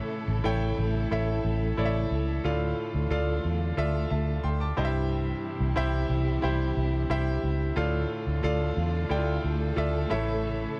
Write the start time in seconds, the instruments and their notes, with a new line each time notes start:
Already playing: grand piano A2 E3 E4 A4 C#5 E5, string section C#3 E3 A3 E4 A4
0.28 fingered electric bass A1
0.44 fingered electric bass A1, grand piano E4 A4 C#5 G5
0.78 fingered electric bass A1
1.11 fingered electric bass A1, grand piano E4 A4 C#5 E5
1.45 fingered electric bass A1
1.77 fingered electric bass A1, grand piano E4 A4 C#5 D5
1.86 grand piano E5
2.11 fingered electric bass C#2
2.43 fingered electric bass D2, grand piano A2 F4 A4 D5 F5, string section D3 A3 F4
2.95 fingered electric bass D2
3.10 fingered electric bass D2, grand piano F4 A4 D5 F5
3.45 fingered electric bass E2
3.77 fingered electric bass D2, grand piano F4 A4 D5 E5
4.10 fingered electric bass D2, grand piano E5 A5
4.43 fingered electric bass D2, grand piano G5 C6
4.60 grand piano A5 D6
4.77 fingered electric bass C2, grand piano G2 E4 G4 C5 D#5, string section C3 E3 G3 E4 G4
4.85 grand piano E5
5.60 fingered electric bass C2
5.76 fingered electric bass C2, grand piano E4 G4 C5 E5
6.10 fingered electric bass C2
6.42 fingered electric bass C2, grand piano E4 G4 C5 E5
6.77 fingered electric bass C2
7.10 fingered electric bass C2, grand piano E4 G4 C5 E5
7.43 fingered electric bass C#2
7.76 fingered electric bass D2, grand piano A2 F4 A4 D5 F5, string section D3 A3 F4 A4
8.27 fingered electric bass D2
8.43 fingered electric bass D2, grand piano F4 A4 D5 F5
8.77 fingered electric bass E2
9.09 fingered electric bass D2, grand piano E4 A4 D5 G5
9.16 grand piano F4
9.44 fingered electric bass D2
9.76 fingered electric bass D2, grand piano F4 A4 D5 E5
10.10 fingered electric bass A1, grand piano A2 E3 E4 A4 C#5 E5, string section C#3 E3 E4